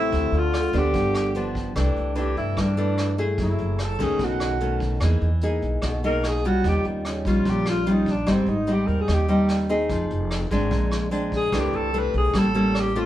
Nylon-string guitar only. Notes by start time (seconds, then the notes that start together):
Already playing: A3 C4
0.12 D3
0.73 F3 B3 D4
0.94 G2
1.36 F3 B3 D4
1.76 C3 E3 A3 D4
2.15 E3 A3 D4
2.57 G2
2.77 E3 A3 D4
3.18 A3 E4 G#4
3.39 F#3
4.00 D#3 A3 C#4
4.21 B2
4.61 D#3 A3 C#4
5.02 E3 A#3 D#4 G#4
5.43 A#3 D#4 G#4
5.83 B2
6.04 A#3 D#4 G#4
6.45 G3 C#4 F4
6.65 D#3
7.26 G3 C#4 F4
7.45 A#2
7.86 G3 C#4 F4
8.26 G#2 G3 C4 D#4
8.67 G3 C4 D#4
9.08 D#3
9.28 G3 C4 D#4
9.69 C4 D#4 G#4
9.90 F3
10.51 G#3 C4 D4
10.71 A#2
11.11 G#3 C4 D4
11.52 C3 E3 A3 D4
11.94 E3 A3 D4
12.34 A2 G3 A#3 C#4
12.55 G3 A#3 C#4
12.95 A3 C4 F4